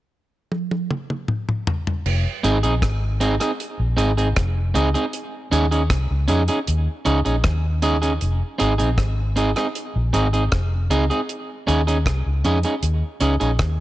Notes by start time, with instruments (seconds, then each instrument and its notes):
0.52 high tom
0.71 high tom
0.91 mid tom
1.10 mid tom
1.28 mid tom
1.49 mid tom
1.67 floor tom
1.87 floor tom
2.06 fingered electric bass F1, crash
2.43 fingered electric bass G#1, clean electric guitar C4 D#4 G#4, closed hi-hat
2.63 fingered electric bass A#1, clean electric guitar C4 D#4 G#4, closed hi-hat
2.82 fingered electric bass G#1, kick, cross-stick, closed hi-hat
3.20 clean electric guitar C4 D#4 G#4, closed hi-hat
3.40 clean electric guitar C4 D#4 G#4, cross-stick, closed hi-hat
3.60 closed hi-hat
3.80 fingered electric bass A#1
3.97 fingered electric bass G#1, clean electric guitar C4 D#4 G#4, closed hi-hat
4.17 clean electric guitar C4 D#4 G#4, closed hi-hat
4.36 fingered electric bass F1, kick, cross-stick, closed hi-hat
4.74 fingered electric bass C#2, clean electric guitar C4 D#4 G#4, closed hi-hat
4.94 clean electric guitar C4 D#4 G#4, closed hi-hat
5.13 closed hi-hat
5.51 fingered electric bass D#2, clean electric guitar C#4 D#4 G#4, closed hi-hat
5.71 clean electric guitar C#4 D#4 G#4, closed hi-hat
5.90 fingered electric bass C2, kick, cross-stick, closed hi-hat
6.11 fingered electric bass C#2
6.28 fingered electric bass F2, clean electric guitar C#4 D#4 G#4, closed hi-hat
6.48 clean electric guitar C#4 D#4 G#4, closed hi-hat
6.67 fingered electric bass D#2, closed hi-hat
7.05 fingered electric bass C#2, clean electric guitar C#4 D#4 G#4, closed hi-hat
7.25 fingered electric bass A#1, clean electric guitar C#4 D#4 G#4, closed hi-hat
7.44 fingered electric bass D#2, kick, cross-stick, closed hi-hat
7.82 clean electric guitar C#4 D#4 G#4, closed hi-hat
8.02 clean electric guitar C#4 D#4 G#4, closed hi-hat
8.21 fingered electric bass F1, closed hi-hat
8.58 fingered electric bass G#1, clean electric guitar C4 D#4 G#4, closed hi-hat
8.78 fingered electric bass A#1, clean electric guitar C4 D#4 G#4, closed hi-hat
8.98 fingered electric bass G#1, kick, cross-stick, closed hi-hat
9.36 clean electric guitar C4 D#4 G#4, closed hi-hat
9.56 clean electric guitar C4 D#4 G#4, cross-stick, closed hi-hat
9.75 closed hi-hat
9.96 fingered electric bass A#1
10.13 fingered electric bass G#1, clean electric guitar C4 D#4 G#4, closed hi-hat
10.33 clean electric guitar C4 D#4 G#4, closed hi-hat
10.52 fingered electric bass F1, kick, cross-stick, closed hi-hat
10.90 fingered electric bass C#2, clean electric guitar C4 D#4 G#4, closed hi-hat
11.10 clean electric guitar C4 D#4 G#4, closed hi-hat
11.29 closed hi-hat
11.67 fingered electric bass D#2, clean electric guitar C#4 D#4 G#4, closed hi-hat
11.87 clean electric guitar C#4 D#4 G#4, closed hi-hat
12.06 fingered electric bass C2, kick, cross-stick, closed hi-hat
12.26 fingered electric bass C#2
12.44 fingered electric bass F2, clean electric guitar C#4 D#4 G#4, closed hi-hat
12.63 clean electric guitar C#4 D#4 G#4, closed hi-hat
12.83 fingered electric bass D#2, closed hi-hat
13.21 fingered electric bass C#2, clean electric guitar C#4 D#4 G#4, closed hi-hat
13.40 fingered electric bass A#1, clean electric guitar C#4 D#4 G#4, closed hi-hat
13.59 fingered electric bass D#2, kick, cross-stick, closed hi-hat